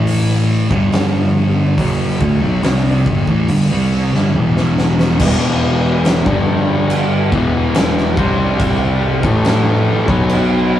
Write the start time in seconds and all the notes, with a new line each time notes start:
Already playing: A1 A2 E3 A3
0.07 open hi-hat
0.71 G1 G2 D3 G3, kick
0.92 snare, open hi-hat
1.78 F#1 F#2 C#3 F#3, kick, open hi-hat
2.21 D2 D3 A3, kick
2.41 B1 B2 F#3
2.63 C2 C3 G3 C4, snare, open hi-hat
3.06 G1 G2 D3, kick
3.27 A1 A2 E3, kick
3.48 G1 G2 D3, open hi-hat
3.70 C2 C3 G3 C4
4.12 G1 G2 D3, snare
4.33 E1 E2 B2 E3, high tom
4.57 snare
4.78 snare
4.99 snare
5.19 E1 E2 B2 E3, kick, crash
6.05 snare, crash
6.26 G1 G2 D3 G3, kick
6.90 crash
7.32 E1 E2 B2 E3, kick
7.75 snare, crash
7.97 snare
8.17 C2 C3 G3 C4, kick
8.60 kick, crash
9.23 A1 A2 E3 A3, kick
9.45 snare, crash
10.07 B1 B2 F#3 B3, kick
10.29 crash